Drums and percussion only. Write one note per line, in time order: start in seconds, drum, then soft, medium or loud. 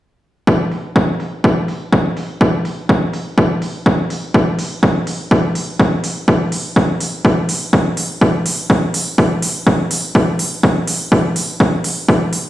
0.47 kick loud
0.72 open hi-hat loud
0.96 kick loud
1.20 open hi-hat medium
1.44 kick loud
1.68 open hi-hat loud
1.93 kick medium
2.17 open hi-hat medium
2.41 kick loud
2.65 open hi-hat loud
2.89 kick loud
3.13 open hi-hat loud
3.38 kick loud
3.62 open hi-hat loud
3.86 kick loud
4.10 open hi-hat loud
4.34 kick loud
4.59 open hi-hat loud
4.83 kick loud
5.07 open hi-hat loud
5.31 kick loud
5.55 open hi-hat loud
5.80 kick loud
6.04 open hi-hat loud
6.28 kick loud
6.52 open hi-hat loud
6.76 kick loud
7.00 open hi-hat loud
7.25 kick loud
7.49 open hi-hat loud
7.73 kick loud
7.97 open hi-hat loud
8.21 kick loud
8.46 open hi-hat loud
8.70 kick loud
8.94 open hi-hat loud
9.18 kick loud
9.42 open hi-hat loud
9.67 kick loud
9.91 open hi-hat loud
10.15 kick loud
10.39 open hi-hat medium
10.63 kick medium
10.87 open hi-hat loud
11.12 kick loud
11.36 open hi-hat loud
11.60 kick medium
11.84 open hi-hat loud
12.09 kick loud
12.33 open hi-hat medium